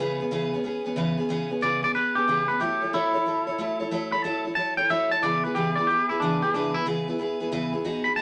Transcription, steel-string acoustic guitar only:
0.00 C#3 E3 B3 C#4 G#4 B4
0.20 B3 C#4 G#4 B4
0.31 C#3 E3 B3 C#4 G#4 B4
0.53 B3 C#4 G#4 B4
0.64 B3 C#4 G#4 B4
0.85 B3 C#4 G#4 B4
0.96 C#3 E3 B3 C#4 G#4 B4
1.17 B3 C#4 G#4 B4
1.29 C#3 E3 B3 C#4 G#4 B4
1.50 B3 C#4 G#4 B4
1.61 C#3 E3 B3 C#4 G#4 B4
1.83 B3 C#4 G#4 B4
1.94 B3 C#4 G#4 B4
2.15 B3 C#4 G#4 B4
2.27 C#3 E3 B3 C#4 G#4 B4
2.48 B3 C#4 G#4 B4
2.60 F#3 A3 E4 A4 C#5
2.82 E4 A4 C#5
2.93 F#3 A3 E4 A4 C#5
3.13 E4 A4 C#5
3.26 F#3 E4 A4 C#5
3.47 E4 A4 C#5
3.58 F#3 A3 E4 A4 C#5
3.80 E4 A4 C#5
3.91 F#3 A3 E4 A4 C#5
4.12 E4 A4 C#5
4.24 F#3 A3 E4 A4 C#5
4.45 E4 A4 C#5
4.56 F#3 E4 A4 C#5
4.78 E4 A4 C#5
4.90 F#3 A3 E4 A4 C#5
5.11 E4 A4 C#5
5.22 C#3 E3 B3 E4 G#4 B4
5.45 B3 E4 G#4 B4
5.55 C#3 E3 B3 E4 G#4 B4
5.77 B3 E4 G#4 B4
5.89 B3 E4 G#4 B4
6.10 B3 E4 G#4 B4
6.22 C#3 E3 B3 E4 G#4 B4
6.42 B3 E4 G#4 B4
6.54 C#3 E3 B3 E4 G#4 B4
6.76 B3 E4 G#4 B4
6.86 C#3 E3 B3 E4 G#4 B4
7.08 B3 E4 G#4 B4
7.19 B3 E4 G#4 B4
7.40 B3 E4 G#4 B4
7.52 C#3 E3 B3 E4 G#4 B4
7.73 B3 E4 G#4 B4
7.84 B3 D#4 F#4 G#4
8.05 D#4 F#4 G#4
8.17 B3 D#4 F#4

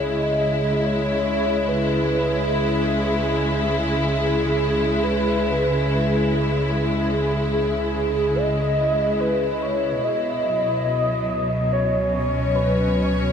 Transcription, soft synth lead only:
0.04 D#5
0.86 C#5
1.68 B4
4.20 G#4
5.03 B4
7.53 G#4
8.35 D#5
9.20 B4
9.62 C#5
10.03 D#5
11.73 C#5
12.55 B4

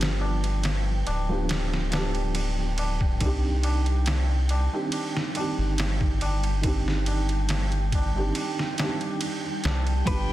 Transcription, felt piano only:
Already playing: F3 B3 D4 G4
1.29 F3 B3 D4 G4
1.90 F3 B3
1.94 D4 G4
3.20 D#3 C4 D4
3.26 G4
4.72 D#3 C4 D4 G4
5.33 D#3 C4
5.37 D4 G4
6.61 D#3 C4 D4
6.67 G4
8.15 D#3 C4 D4 G4
8.77 D#3 C4
8.81 D4 G4
10.05 F3 B3 D4
10.11 G4

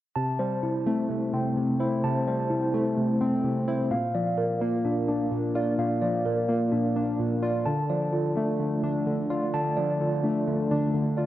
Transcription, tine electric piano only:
0.16 A5
0.39 C5
0.63 E4
0.86 C4
1.09 A3
1.33 C3
1.80 C5
2.04 A5
2.28 C5
2.50 E4
2.73 C4
2.97 A3
3.21 C3
3.68 C5
3.91 F5
4.15 D5
4.38 A#4
4.61 F4
4.85 D4
5.08 A#3
5.55 D5
5.79 F5
6.02 D5
6.26 A#4
6.48 F4
6.72 D4
6.96 A#3
7.43 D5
7.66 A5
7.90 D5
8.13 F4
8.36 D4
8.60 A3
8.83 D3
9.30 D5
9.54 A5
9.77 D5
10.01 F4
10.24 D4
10.47 A3
10.71 D3
11.17 D5

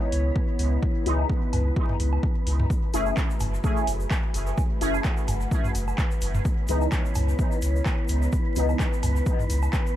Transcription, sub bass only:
0.12 C#2
0.59 C#2
1.06 C#2
1.53 C#2
2.00 C#2
2.47 C#2
2.94 F#1
3.41 F#1
3.87 F#1
4.34 F#1
4.81 F#1
5.28 F#1
5.75 F#1
6.22 F#1
6.69 C#2
7.15 C#2
7.62 C#2
8.09 C#2
8.56 C#2
9.03 C#2
9.50 C#2

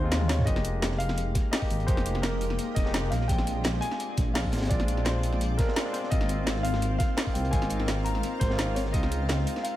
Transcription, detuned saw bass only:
Already playing: D#2
0.47 F1
1.71 G#1
1.88 F1
2.06 F1
2.76 F1
3.12 A#1
4.18 A#1
4.53 G#1
4.71 A#1
6.12 G#1
7.35 C2
7.53 G#1
7.70 G#1
8.41 G#1
8.94 C#2

